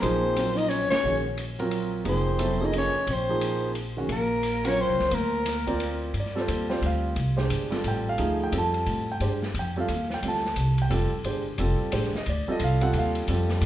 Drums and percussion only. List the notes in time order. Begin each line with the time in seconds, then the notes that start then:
0.03 ride
0.36 hi-hat pedal, ride
0.58 ride
0.71 ride
0.92 snare, ride
1.38 hi-hat pedal, ride
1.59 ride
1.71 ride
2.05 ride
2.39 hi-hat pedal, ride
2.73 ride
3.07 ride
3.41 hi-hat pedal, ride
3.75 ride
4.09 ride
4.43 hi-hat pedal, ride
4.65 ride
4.99 snare
5.11 ride
5.46 snare, hi-hat pedal, ride
5.67 kick, ride
5.80 ride
6.14 ride
6.26 snare
6.37 snare
6.48 hi-hat pedal, ride
6.70 snare
6.82 ride
7.16 ride
7.37 snare
7.50 hi-hat pedal, ride
7.72 snare, ride
7.84 ride
8.18 ride
8.52 hi-hat pedal, ride
8.74 ride
8.86 ride
9.20 ride
9.42 snare
9.55 ride
9.88 hi-hat pedal, ride
10.10 snare
10.23 ride
10.34 snare
10.45 snare
10.56 hi-hat pedal, ride
10.78 ride
10.90 ride
11.24 ride
11.58 hi-hat pedal, ride
11.92 ride
12.04 snare
12.15 snare
12.26 ride
12.60 hi-hat pedal, ride
12.81 ride
12.93 ride
13.15 ride
13.28 ride
13.49 snare
13.61 hi-hat pedal, ride